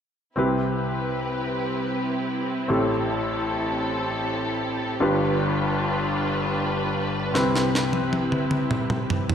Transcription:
0.36 2.65 C2 soft
0.36 2.65 C3 soft
0.36 2.64 C4 medium
0.36 4.98 C4 medium
0.36 2.65 E4 soft
0.36 4.98 E4 soft
0.36 2.66 G4 soft
0.36 2.65 G4 soft
0.36 2.67 B4 medium
0.36 2.66 B4 medium
2.68 4.98 A1 soft
2.68 4.98 A2 medium
2.68 4.97 C4 soft
2.68 4.97 E4 soft
2.68 9.35 G4 soft
2.68 4.98 G4 soft
2.68 4.99 A4 medium
2.68 4.98 A4 medium
5.00 7.30 G1 medium
5.00 7.30 G2 medium
5.00 7.31 D4 soft
5.00 7.30 D4 medium
5.00 7.30 F4 soft
5.00 7.31 F4 medium
5.00 7.30 G4 soft
5.00 9.35 B4 medium
5.00 7.31 B4 medium
7.33 9.35 C2 soft
7.33 9.35 C3 medium
7.33 9.35 C4 medium
7.33 9.35 E4 soft
7.33 9.35 G4 soft
7.33 9.35 B4 medium
7.33 snare soft
7.56 snare soft
7.75 snare soft
7.93 high tom soft
8.13 high tom medium
8.32 mid tom medium
8.51 mid tom medium
8.71 mid tom medium
8.90 mid tom medium
9.10 floor tom medium
9.30 floor tom medium

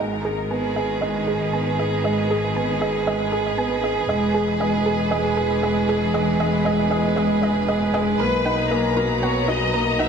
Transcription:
0.00 4.07 G#1 medium
0.00 4.09 D#3 medium
0.00 0.14 G#3 medium
0.00 0.91 A#4 medium
0.25 0.49 G#4 medium
0.25 0.28 G#4 medium
0.50 0.75 B3 medium
0.50 10.09 B4 medium
0.50 0.54 G#5 medium
0.56 9.65 G#4 medium
0.76 1.00 G#4 medium
0.76 0.83 D#5 medium
1.01 1.16 G#3 medium
1.01 1.09 D#5 medium
1.27 1.52 G#4 medium
1.27 1.30 G#4 medium
1.53 1.77 B3 medium
1.53 1.56 G#5 medium
1.78 2.02 G#4 medium
1.78 1.86 D#5 medium
2.04 2.19 G#3 medium
2.04 2.12 D#5 medium
2.30 2.54 G#4 medium
2.30 2.33 G#4 loud
2.56 2.80 B3 medium
2.56 2.59 G#5 medium
2.81 3.05 G#4 medium
2.81 2.89 D#5 medium
3.07 3.22 G#3 loud
3.07 3.14 D#5 medium
3.32 3.57 G#4 medium
3.32 3.35 G#4 medium
3.57 3.82 B3 medium
3.57 3.61 G#5 medium
3.83 4.07 G#4 medium
3.83 3.91 D#5 medium
4.08 8.16 E1 medium
4.08 8.19 E3 medium
4.08 4.24 G#3 loud
4.08 4.16 D#5 medium
4.34 4.38 G#4 loud
4.34 4.58 G#4 medium
4.60 4.75 G#3 loud
4.60 4.68 D#5 medium
4.86 5.10 G#4 medium
4.86 4.89 G#4 loud
5.11 5.26 G#3 loud
5.11 5.19 D#5 medium
5.37 5.40 G#4 loud
5.37 5.61 G#4 medium
5.63 5.78 G#3 loud
5.63 5.70 D#5 medium
5.88 6.12 G#4 medium
5.88 5.92 G#4 loud
6.14 6.29 G#3 loud
6.14 6.22 D#5 medium
6.40 6.55 G#3 loud
6.40 6.47 D#5 medium
6.65 6.80 G#3 loud
6.65 6.73 D#5 medium
6.91 7.06 G#3 loud
6.91 6.99 D#5 medium
7.16 7.31 G#3 loud
7.16 7.25 D#5 medium
7.42 7.57 G#3 loud
7.42 7.50 D#5 medium
7.68 7.83 G#3 loud
7.68 7.76 D#5 medium
7.94 8.08 G#3 loud
7.94 8.01 D#5 medium
8.20 10.09 B1 medium
8.20 10.09 F#3 medium
8.20 8.44 A#3 medium
8.20 8.23 A#4 loud
8.20 8.93 B4 loud
8.45 8.60 D#4 medium
8.45 8.48 F#5 medium
8.65 10.09 A#5 medium
8.71 8.85 A#3 loud
8.71 8.78 D#5 medium
8.97 9.21 F#4 medium
8.97 9.00 A#4 loud
9.22 9.47 B3 medium
9.22 9.46 C#5 medium
9.22 9.25 F#5 medium
9.48 9.72 F#4 medium
9.48 9.55 D#5 medium
9.48 10.00 D#5 medium
9.74 9.98 A#3 medium
9.74 9.77 A#4 loud
9.99 10.09 D#4 loud
9.99 10.09 E5 medium
9.99 10.02 F#5 medium

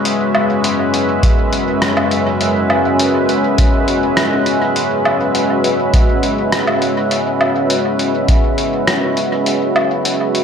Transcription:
0.00 10.44 G#3 medium
0.00 10.44 C#4 medium
0.00 10.44 F#4 medium
0.00 10.44 B4 medium
0.00 10.44 E5 medium
0.05 4.76 F#2 medium
0.05 closed hi-hat medium
0.35 low woodblock medium
0.64 closed hi-hat medium
0.94 closed hi-hat soft
1.23 kick loud
1.23 closed hi-hat medium
1.53 closed hi-hat soft
1.82 cross-stick loud
1.82 closed hi-hat medium
1.97 low woodblock medium
2.11 closed hi-hat soft
2.41 closed hi-hat medium
2.70 low woodblock medium
2.99 closed hi-hat medium
3.29 closed hi-hat soft
3.58 kick loud
3.58 closed hi-hat medium
3.88 closed hi-hat soft
4.17 cross-stick loud
4.17 closed hi-hat medium
4.46 closed hi-hat soft
4.76 closed hi-hat soft
5.05 low woodblock medium
5.35 closed hi-hat soft
5.64 closed hi-hat soft
5.94 kick loud
5.94 closed hi-hat medium
6.23 closed hi-hat soft
6.52 cross-stick medium
6.52 closed hi-hat medium
6.67 low woodblock medium
6.82 closed hi-hat soft
7.11 closed hi-hat medium
7.41 low woodblock medium
7.70 closed hi-hat soft
7.99 closed hi-hat soft
8.28 kick loud
8.28 closed hi-hat medium
8.58 closed hi-hat soft
8.88 cross-stick medium
8.88 closed hi-hat soft
9.17 closed hi-hat soft
9.46 10.44 F#2 medium
9.46 closed hi-hat medium
9.76 low woodblock medium
10.05 closed hi-hat soft
10.35 closed hi-hat soft

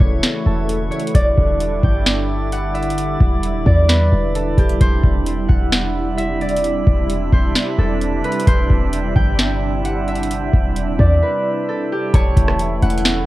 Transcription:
0.00 0.22 E1 loud
0.00 1.11 C#3 medium
0.00 1.11 E3 medium
0.00 1.11 A3 medium
0.00 12.10 E4 medium
0.00 1.13 F#4 medium
0.00 0.90 C#5 medium
0.00 1.11 C#5 medium
0.00 0.59 E5 medium
0.00 kick medium
0.23 snare loud
0.23 closed hi-hat medium
0.46 0.90 E1 loud
0.46 2.65 A4 medium
0.69 closed hi-hat medium
0.91 1.20 C#5 medium
0.91 closed hi-hat soft
0.99 closed hi-hat medium
1.07 closed hi-hat medium
1.14 1.37 E1 loud
1.14 4.77 D3 medium
1.14 4.77 G3 medium
1.14 12.10 G3 medium
1.14 12.10 D4 medium
1.14 12.10 E4 medium
1.14 2.99 D5 medium
1.14 4.77 D5 medium
1.14 kick loud
1.14 closed hi-hat medium
1.37 1.81 E1 loud
1.37 kick medium
1.60 closed hi-hat medium
1.83 3.17 G1 loud
1.83 2.58 G5 medium
1.83 kick medium
2.06 snare loud
2.06 closed hi-hat medium
2.52 4.13 F#5 medium
2.52 closed hi-hat medium
2.74 4.47 E5 medium
2.74 closed hi-hat soft
2.83 closed hi-hat medium
2.90 closed hi-hat medium
2.98 closed hi-hat medium
3.21 3.56 E1 loud
3.21 kick medium
3.43 closed hi-hat medium
3.55 3.66 D1 loud
3.66 4.10 E2 loud
3.66 5.51 D5 medium
3.66 kick medium
3.88 4.87 B4 medium
3.88 snare loud
3.88 closed hi-hat medium
4.12 4.56 E1 loud
4.35 6.55 A4 medium
4.35 closed hi-hat medium
4.58 4.80 E1 loud
4.58 5.55 G4 medium
4.58 kick medium
4.58 closed hi-hat medium
4.69 closed hi-hat medium
4.81 5.03 E1 loud
4.81 12.10 C3 medium
4.81 12.10 C4 medium
4.81 6.79 C5 loud
4.81 12.10 E5 medium
4.81 kick loud
4.81 closed hi-hat medium
5.04 5.48 E1 loud
5.04 kick medium
5.26 closed hi-hat medium
5.49 6.83 E1 loud
5.49 7.09 F#5 medium
5.49 kick medium
5.72 snare loud
5.72 closed hi-hat medium
6.17 7.90 E5 medium
6.17 closed hi-hat medium
6.41 8.26 D5 medium
6.41 closed hi-hat soft
6.49 closed hi-hat medium
6.56 closed hi-hat medium
6.64 closed hi-hat medium
6.87 7.31 E1 loud
6.87 kick medium
7.10 closed hi-hat medium
7.33 7.55 E1 loud
7.33 8.30 C5 medium
7.33 kick medium
7.56 snare loud
7.56 closed hi-hat medium
7.79 8.23 E1 loud
7.79 9.98 A4 medium
8.02 closed hi-hat medium
8.24 8.53 B4 medium
8.24 closed hi-hat soft
8.32 closed hi-hat medium
8.40 closed hi-hat medium
8.47 8.69 E1 loud
8.47 10.45 C5 loud
8.47 kick loud
8.47 closed hi-hat medium
8.70 9.14 E1 loud
8.70 kick medium
8.93 closed hi-hat medium
9.16 10.49 G1 loud
9.16 9.91 G5 medium
9.16 kick medium
9.39 snare loud
9.39 closed hi-hat medium
9.85 11.46 F#5 medium
9.85 closed hi-hat medium
10.08 11.80 E5 medium
10.08 closed hi-hat soft
10.15 closed hi-hat medium
10.23 closed hi-hat medium
10.31 closed hi-hat medium
10.53 10.89 E1 loud
10.53 kick medium
10.76 closed hi-hat medium
10.88 10.99 D1 loud
10.99 11.21 E2 loud
10.99 12.20 D5 medium
10.99 kick loud
11.22 13.26 B4 medium
11.68 13.26 A4 medium
11.92 12.88 G4 medium
12.14 12.36 E1 loud
12.14 13.26 C#3 medium
12.14 13.26 E3 medium
12.14 13.26 A3 medium
12.14 13.26 E4 medium
12.14 13.26 C#5 medium
12.14 13.26 C#5 loud
12.14 13.26 A5 medium
12.14 kick loud
12.14 closed hi-hat medium
12.37 12.81 E1 loud
12.37 kick medium
12.37 closed hi-hat medium
12.48 cross-stick loud
12.59 13.26 E4 medium
12.59 closed hi-hat medium
12.82 13.26 E1 loud
12.82 13.26 C#4 medium
12.82 13.26 F#5 medium
12.82 closed hi-hat soft
12.90 closed hi-hat medium
12.98 closed hi-hat medium
13.05 snare loud
13.05 closed hi-hat medium

